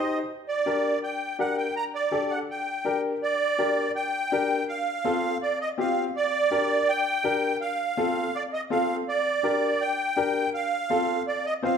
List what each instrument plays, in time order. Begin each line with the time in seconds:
Already playing: upright piano D#4 G4 C5, accordion D#5
0.48 accordion D5
0.66 upright piano D4 G4 A#4
1.03 accordion G5
1.39 upright piano D4 G4 A#4, accordion F#5
1.58 accordion G5
1.76 accordion A#5
1.95 accordion D5
2.11 upright piano D4 G4 A4
2.31 accordion F#5
2.51 accordion G5
2.85 upright piano D4 G4 A#4
3.23 accordion D5
3.58 upright piano D4 G4 A#4
3.96 accordion G5
4.32 upright piano D4 G4 A#4
4.69 accordion F5
5.05 upright piano C4 F4 A4
5.42 accordion D5
5.61 accordion D#5
5.78 upright piano C4 F4 G4, accordion F5
6.17 accordion D5
6.51 upright piano D4 G4 A#4
6.89 accordion G5
7.24 upright piano D4 G4 A#4
7.61 accordion F5
7.97 upright piano C4 F4 A4
8.35 accordion D5
8.53 accordion D#5
8.70 upright piano C4 F4 A4, accordion F5
9.09 accordion D5
9.43 upright piano D4 G4 A#4
9.81 accordion G5
10.16 upright piano D4 G4 A#4
10.54 accordion F5
10.90 upright piano C4 F4 A4
11.28 accordion D5
11.46 accordion D#5
11.63 upright piano C4 F4 C5, accordion F5